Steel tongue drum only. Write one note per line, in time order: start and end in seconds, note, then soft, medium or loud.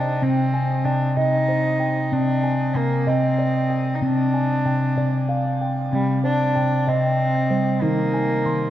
0.00 0.54 C5 medium
0.00 0.84 G5 medium
0.22 0.82 C3 medium
0.22 0.85 C4 medium
0.54 1.49 G#5 medium
0.85 1.14 C3 medium
0.85 1.79 G5 medium
1.17 1.46 C3 medium
1.17 1.81 D#5 medium
1.49 2.44 C5 medium
1.80 2.44 G5 medium
2.12 2.72 C3 medium
2.12 2.76 C4 medium
2.44 3.39 G#5 medium
2.75 3.04 C3 medium
3.07 3.36 C3 medium
3.07 3.71 D#5 medium
3.39 4.34 D5 medium
3.70 4.64 G5 medium
4.02 4.61 C3 medium
4.02 4.66 C4 medium
4.34 5.29 G#5 medium
4.65 4.94 C3 medium
4.65 5.60 G5 medium
4.97 5.26 C3 medium
4.97 5.61 D5 medium
5.29 6.24 F5 medium
5.61 6.25 G5 medium
5.92 6.52 C3 medium
5.92 6.56 C4 medium
6.24 7.19 C5 medium
6.56 6.85 C3 medium
6.56 7.51 G5 medium
6.87 7.47 C3 medium
6.87 6.89 D#5 medium
7.50 7.80 G3 medium
7.50 8.14 C5 medium
7.82 8.42 D#3 medium
7.82 8.46 D#4 medium
8.14 8.70 G#5 medium
8.46 8.70 D#3 medium
8.46 8.70 C6 medium